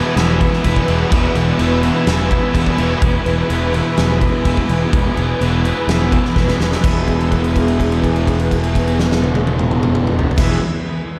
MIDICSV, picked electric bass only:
0, 0, Header, 1, 2, 480
1, 0, Start_track
1, 0, Tempo, 476569
1, 1129, Time_signature, 4, 2, 24, 8
1, 11271, End_track
2, 0, Start_track
2, 0, Title_t, "Picked electric bass"
2, 0, Program_c, 0, 34
2, 165, Note_on_c, 0, 28, 90
2, 469, Note_off_c, 0, 28, 0
2, 654, Note_on_c, 0, 28, 95
2, 804, Note_off_c, 0, 28, 0
2, 889, Note_on_c, 0, 28, 96
2, 1040, Note_off_c, 0, 28, 0
2, 1131, Note_on_c, 0, 28, 86
2, 1281, Note_off_c, 0, 28, 0
2, 1363, Note_on_c, 0, 28, 88
2, 1515, Note_off_c, 0, 28, 0
2, 1603, Note_on_c, 0, 28, 85
2, 1907, Note_off_c, 0, 28, 0
2, 2086, Note_on_c, 0, 28, 87
2, 2388, Note_off_c, 0, 28, 0
2, 2564, Note_on_c, 0, 28, 87
2, 2716, Note_off_c, 0, 28, 0
2, 2801, Note_on_c, 0, 28, 96
2, 2954, Note_off_c, 0, 28, 0
2, 3042, Note_on_c, 0, 28, 92
2, 3195, Note_off_c, 0, 28, 0
2, 3285, Note_on_c, 0, 28, 84
2, 3436, Note_off_c, 0, 28, 0
2, 3527, Note_on_c, 0, 28, 90
2, 3829, Note_off_c, 0, 28, 0
2, 4007, Note_on_c, 0, 28, 89
2, 4309, Note_off_c, 0, 28, 0
2, 4485, Note_on_c, 0, 28, 89
2, 4636, Note_off_c, 0, 28, 0
2, 4732, Note_on_c, 0, 28, 91
2, 4881, Note_off_c, 0, 28, 0
2, 4968, Note_on_c, 0, 28, 90
2, 5118, Note_off_c, 0, 28, 0
2, 5210, Note_on_c, 0, 28, 87
2, 5360, Note_off_c, 0, 28, 0
2, 5448, Note_on_c, 0, 28, 83
2, 5750, Note_off_c, 0, 28, 0
2, 5918, Note_on_c, 0, 28, 83
2, 6223, Note_off_c, 0, 28, 0
2, 6405, Note_on_c, 0, 28, 92
2, 6556, Note_off_c, 0, 28, 0
2, 6645, Note_on_c, 0, 28, 82
2, 6797, Note_off_c, 0, 28, 0
2, 6889, Note_on_c, 0, 28, 90
2, 10348, Note_off_c, 0, 28, 0
2, 10453, Note_on_c, 0, 28, 82
2, 10651, Note_off_c, 0, 28, 0
2, 11271, End_track
0, 0, End_of_file